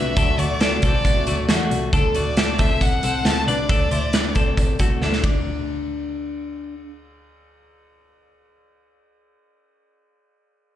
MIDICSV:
0, 0, Header, 1, 6, 480
1, 0, Start_track
1, 0, Tempo, 441501
1, 179, Time_signature, 4, 2, 24, 8
1, 11697, End_track
2, 0, Start_track
2, 0, Title_t, "Violin"
2, 0, Program_c, 0, 40
2, 0, Note_on_c, 0, 76, 86
2, 411, Note_on_c, 0, 74, 89
2, 427, Note_off_c, 0, 76, 0
2, 887, Note_off_c, 0, 74, 0
2, 893, Note_on_c, 0, 74, 96
2, 1811, Note_off_c, 0, 74, 0
2, 2112, Note_on_c, 0, 69, 91
2, 2348, Note_on_c, 0, 74, 86
2, 2364, Note_off_c, 0, 69, 0
2, 2827, Note_on_c, 0, 76, 91
2, 2843, Note_off_c, 0, 74, 0
2, 3058, Note_on_c, 0, 78, 92
2, 3074, Note_off_c, 0, 76, 0
2, 3534, Note_on_c, 0, 81, 97
2, 3550, Note_off_c, 0, 78, 0
2, 3770, Note_off_c, 0, 81, 0
2, 3777, Note_on_c, 0, 74, 86
2, 5412, Note_off_c, 0, 74, 0
2, 11697, End_track
3, 0, Start_track
3, 0, Title_t, "Clean electric guitar"
3, 0, Program_c, 1, 27
3, 0, Note_on_c, 1, 62, 58
3, 0, Note_on_c, 1, 71, 72
3, 179, Note_off_c, 1, 62, 0
3, 179, Note_off_c, 1, 71, 0
3, 183, Note_on_c, 1, 69, 90
3, 192, Note_on_c, 1, 62, 66
3, 418, Note_off_c, 1, 69, 0
3, 422, Note_on_c, 1, 66, 62
3, 425, Note_off_c, 1, 62, 0
3, 428, Note_on_c, 1, 57, 49
3, 655, Note_off_c, 1, 66, 0
3, 660, Note_on_c, 1, 69, 75
3, 663, Note_off_c, 1, 57, 0
3, 669, Note_on_c, 1, 62, 63
3, 891, Note_off_c, 1, 69, 0
3, 903, Note_off_c, 1, 62, 0
3, 904, Note_on_c, 1, 69, 63
3, 913, Note_on_c, 1, 60, 49
3, 1351, Note_off_c, 1, 69, 0
3, 1356, Note_off_c, 1, 60, 0
3, 1383, Note_on_c, 1, 66, 64
3, 1393, Note_on_c, 1, 57, 48
3, 1610, Note_off_c, 1, 66, 0
3, 1619, Note_off_c, 1, 57, 0
3, 1623, Note_on_c, 1, 66, 67
3, 1632, Note_on_c, 1, 57, 56
3, 2070, Note_off_c, 1, 66, 0
3, 2075, Note_off_c, 1, 57, 0
3, 2101, Note_on_c, 1, 69, 87
3, 2109, Note_on_c, 1, 62, 63
3, 2337, Note_off_c, 1, 69, 0
3, 2341, Note_on_c, 1, 66, 72
3, 2342, Note_off_c, 1, 62, 0
3, 2349, Note_on_c, 1, 57, 51
3, 2578, Note_off_c, 1, 66, 0
3, 2582, Note_off_c, 1, 57, 0
3, 2582, Note_on_c, 1, 69, 73
3, 2591, Note_on_c, 1, 62, 55
3, 2806, Note_off_c, 1, 69, 0
3, 2819, Note_on_c, 1, 69, 67
3, 2823, Note_off_c, 1, 62, 0
3, 2829, Note_on_c, 1, 60, 54
3, 3268, Note_off_c, 1, 69, 0
3, 3273, Note_off_c, 1, 60, 0
3, 3301, Note_on_c, 1, 69, 59
3, 3308, Note_on_c, 1, 60, 42
3, 3749, Note_off_c, 1, 69, 0
3, 3753, Note_off_c, 1, 60, 0
3, 3782, Note_on_c, 1, 71, 71
3, 3790, Note_on_c, 1, 62, 54
3, 4014, Note_off_c, 1, 62, 0
3, 4015, Note_off_c, 1, 71, 0
3, 4019, Note_on_c, 1, 69, 81
3, 4027, Note_on_c, 1, 62, 65
3, 4255, Note_off_c, 1, 69, 0
3, 4259, Note_on_c, 1, 72, 55
3, 4261, Note_off_c, 1, 62, 0
3, 4268, Note_on_c, 1, 64, 52
3, 4494, Note_off_c, 1, 72, 0
3, 4499, Note_on_c, 1, 71, 74
3, 4501, Note_off_c, 1, 64, 0
3, 4507, Note_on_c, 1, 62, 57
3, 4734, Note_off_c, 1, 71, 0
3, 4739, Note_on_c, 1, 69, 64
3, 4740, Note_off_c, 1, 62, 0
3, 4748, Note_on_c, 1, 60, 47
3, 5187, Note_off_c, 1, 69, 0
3, 5193, Note_off_c, 1, 60, 0
3, 5218, Note_on_c, 1, 66, 62
3, 5228, Note_on_c, 1, 57, 54
3, 5456, Note_off_c, 1, 66, 0
3, 5457, Note_on_c, 1, 69, 63
3, 5461, Note_off_c, 1, 57, 0
3, 5468, Note_on_c, 1, 62, 52
3, 5681, Note_off_c, 1, 69, 0
3, 5687, Note_off_c, 1, 62, 0
3, 5700, Note_on_c, 1, 62, 59
3, 7334, Note_off_c, 1, 62, 0
3, 11697, End_track
4, 0, Start_track
4, 0, Title_t, "Twelve-string acoustic guitar"
4, 0, Program_c, 2, 25
4, 0, Note_on_c, 2, 57, 42
4, 0, Note_on_c, 2, 62, 47
4, 0, Note_on_c, 2, 66, 51
4, 170, Note_off_c, 2, 57, 0
4, 173, Note_off_c, 2, 62, 0
4, 174, Note_off_c, 2, 66, 0
4, 174, Note_on_c, 2, 50, 68
4, 177, Note_on_c, 2, 54, 79
4, 183, Note_on_c, 2, 57, 72
4, 186, Note_on_c, 2, 62, 80
4, 187, Note_on_c, 2, 66, 76
4, 403, Note_off_c, 2, 66, 0
4, 413, Note_off_c, 2, 62, 0
4, 416, Note_off_c, 2, 50, 0
4, 416, Note_on_c, 2, 66, 42
4, 418, Note_off_c, 2, 54, 0
4, 421, Note_off_c, 2, 57, 0
4, 426, Note_on_c, 2, 62, 40
4, 434, Note_on_c, 2, 57, 33
4, 646, Note_off_c, 2, 57, 0
4, 649, Note_off_c, 2, 62, 0
4, 651, Note_on_c, 2, 50, 70
4, 653, Note_off_c, 2, 66, 0
4, 657, Note_on_c, 2, 54, 76
4, 659, Note_on_c, 2, 57, 68
4, 662, Note_on_c, 2, 62, 74
4, 666, Note_on_c, 2, 66, 81
4, 876, Note_off_c, 2, 66, 0
4, 888, Note_off_c, 2, 62, 0
4, 889, Note_on_c, 2, 66, 50
4, 894, Note_off_c, 2, 50, 0
4, 896, Note_off_c, 2, 57, 0
4, 897, Note_off_c, 2, 54, 0
4, 901, Note_on_c, 2, 62, 45
4, 909, Note_on_c, 2, 57, 40
4, 1124, Note_off_c, 2, 57, 0
4, 1129, Note_on_c, 2, 54, 60
4, 1133, Note_off_c, 2, 62, 0
4, 1133, Note_off_c, 2, 66, 0
4, 1137, Note_on_c, 2, 57, 68
4, 1146, Note_on_c, 2, 62, 67
4, 1150, Note_on_c, 2, 66, 72
4, 1358, Note_off_c, 2, 66, 0
4, 1369, Note_off_c, 2, 62, 0
4, 1371, Note_on_c, 2, 66, 45
4, 1373, Note_off_c, 2, 54, 0
4, 1377, Note_off_c, 2, 57, 0
4, 1382, Note_on_c, 2, 62, 45
4, 1392, Note_on_c, 2, 57, 41
4, 1609, Note_off_c, 2, 57, 0
4, 1612, Note_off_c, 2, 62, 0
4, 1613, Note_on_c, 2, 50, 78
4, 1614, Note_off_c, 2, 66, 0
4, 1618, Note_on_c, 2, 54, 73
4, 1622, Note_on_c, 2, 57, 87
4, 1625, Note_on_c, 2, 62, 81
4, 1629, Note_on_c, 2, 66, 83
4, 1838, Note_off_c, 2, 66, 0
4, 1847, Note_off_c, 2, 62, 0
4, 1851, Note_on_c, 2, 66, 57
4, 1854, Note_off_c, 2, 50, 0
4, 1857, Note_off_c, 2, 54, 0
4, 1859, Note_off_c, 2, 57, 0
4, 1860, Note_on_c, 2, 62, 50
4, 1871, Note_on_c, 2, 57, 46
4, 2093, Note_off_c, 2, 66, 0
4, 2098, Note_off_c, 2, 62, 0
4, 2103, Note_off_c, 2, 57, 0
4, 11697, End_track
5, 0, Start_track
5, 0, Title_t, "Picked electric bass"
5, 0, Program_c, 3, 34
5, 0, Note_on_c, 3, 36, 71
5, 148, Note_off_c, 3, 36, 0
5, 184, Note_on_c, 3, 38, 104
5, 386, Note_off_c, 3, 38, 0
5, 424, Note_on_c, 3, 38, 90
5, 829, Note_off_c, 3, 38, 0
5, 905, Note_on_c, 3, 36, 85
5, 1309, Note_off_c, 3, 36, 0
5, 1388, Note_on_c, 3, 38, 70
5, 1587, Note_off_c, 3, 38, 0
5, 1625, Note_on_c, 3, 40, 74
5, 1825, Note_off_c, 3, 40, 0
5, 1858, Note_on_c, 3, 36, 71
5, 2061, Note_off_c, 3, 36, 0
5, 2101, Note_on_c, 3, 38, 94
5, 2303, Note_off_c, 3, 38, 0
5, 2339, Note_on_c, 3, 38, 87
5, 3253, Note_off_c, 3, 38, 0
5, 3297, Note_on_c, 3, 36, 64
5, 3539, Note_off_c, 3, 36, 0
5, 3539, Note_on_c, 3, 38, 83
5, 3741, Note_off_c, 3, 38, 0
5, 3778, Note_on_c, 3, 36, 77
5, 3980, Note_off_c, 3, 36, 0
5, 4016, Note_on_c, 3, 38, 85
5, 4219, Note_off_c, 3, 38, 0
5, 4255, Note_on_c, 3, 38, 73
5, 5171, Note_off_c, 3, 38, 0
5, 5214, Note_on_c, 3, 36, 71
5, 5418, Note_off_c, 3, 36, 0
5, 5461, Note_on_c, 3, 38, 73
5, 5662, Note_off_c, 3, 38, 0
5, 5693, Note_on_c, 3, 38, 70
5, 10160, Note_off_c, 3, 38, 0
5, 11697, End_track
6, 0, Start_track
6, 0, Title_t, "Drums"
6, 182, Note_on_c, 9, 36, 107
6, 183, Note_on_c, 9, 42, 91
6, 290, Note_off_c, 9, 36, 0
6, 292, Note_off_c, 9, 42, 0
6, 421, Note_on_c, 9, 42, 66
6, 530, Note_off_c, 9, 42, 0
6, 658, Note_on_c, 9, 42, 92
6, 664, Note_on_c, 9, 38, 103
6, 767, Note_off_c, 9, 42, 0
6, 773, Note_off_c, 9, 38, 0
6, 892, Note_on_c, 9, 42, 63
6, 902, Note_on_c, 9, 36, 82
6, 1001, Note_off_c, 9, 42, 0
6, 1010, Note_off_c, 9, 36, 0
6, 1139, Note_on_c, 9, 36, 86
6, 1148, Note_on_c, 9, 42, 81
6, 1248, Note_off_c, 9, 36, 0
6, 1256, Note_off_c, 9, 42, 0
6, 1377, Note_on_c, 9, 42, 74
6, 1486, Note_off_c, 9, 42, 0
6, 1616, Note_on_c, 9, 38, 94
6, 1622, Note_on_c, 9, 42, 91
6, 1725, Note_off_c, 9, 38, 0
6, 1731, Note_off_c, 9, 42, 0
6, 1863, Note_on_c, 9, 42, 68
6, 1971, Note_off_c, 9, 42, 0
6, 2097, Note_on_c, 9, 36, 100
6, 2097, Note_on_c, 9, 42, 78
6, 2205, Note_off_c, 9, 42, 0
6, 2206, Note_off_c, 9, 36, 0
6, 2332, Note_on_c, 9, 42, 61
6, 2441, Note_off_c, 9, 42, 0
6, 2575, Note_on_c, 9, 42, 90
6, 2581, Note_on_c, 9, 38, 98
6, 2684, Note_off_c, 9, 42, 0
6, 2690, Note_off_c, 9, 38, 0
6, 2812, Note_on_c, 9, 42, 63
6, 2819, Note_on_c, 9, 36, 82
6, 2921, Note_off_c, 9, 42, 0
6, 2928, Note_off_c, 9, 36, 0
6, 3056, Note_on_c, 9, 36, 74
6, 3063, Note_on_c, 9, 42, 75
6, 3165, Note_off_c, 9, 36, 0
6, 3172, Note_off_c, 9, 42, 0
6, 3293, Note_on_c, 9, 42, 76
6, 3402, Note_off_c, 9, 42, 0
6, 3535, Note_on_c, 9, 38, 87
6, 3541, Note_on_c, 9, 42, 80
6, 3643, Note_off_c, 9, 38, 0
6, 3650, Note_off_c, 9, 42, 0
6, 3785, Note_on_c, 9, 42, 63
6, 3894, Note_off_c, 9, 42, 0
6, 4016, Note_on_c, 9, 36, 101
6, 4017, Note_on_c, 9, 42, 74
6, 4125, Note_off_c, 9, 36, 0
6, 4126, Note_off_c, 9, 42, 0
6, 4254, Note_on_c, 9, 42, 67
6, 4363, Note_off_c, 9, 42, 0
6, 4491, Note_on_c, 9, 42, 100
6, 4498, Note_on_c, 9, 38, 92
6, 4600, Note_off_c, 9, 42, 0
6, 4606, Note_off_c, 9, 38, 0
6, 4729, Note_on_c, 9, 42, 60
6, 4737, Note_on_c, 9, 36, 74
6, 4838, Note_off_c, 9, 42, 0
6, 4845, Note_off_c, 9, 36, 0
6, 4973, Note_on_c, 9, 36, 75
6, 4980, Note_on_c, 9, 42, 75
6, 5082, Note_off_c, 9, 36, 0
6, 5088, Note_off_c, 9, 42, 0
6, 5208, Note_on_c, 9, 42, 68
6, 5214, Note_on_c, 9, 36, 77
6, 5317, Note_off_c, 9, 42, 0
6, 5323, Note_off_c, 9, 36, 0
6, 5454, Note_on_c, 9, 38, 46
6, 5562, Note_off_c, 9, 38, 0
6, 5571, Note_on_c, 9, 38, 51
6, 5680, Note_off_c, 9, 38, 0
6, 5693, Note_on_c, 9, 36, 90
6, 5693, Note_on_c, 9, 51, 67
6, 5802, Note_off_c, 9, 36, 0
6, 5802, Note_off_c, 9, 51, 0
6, 11697, End_track
0, 0, End_of_file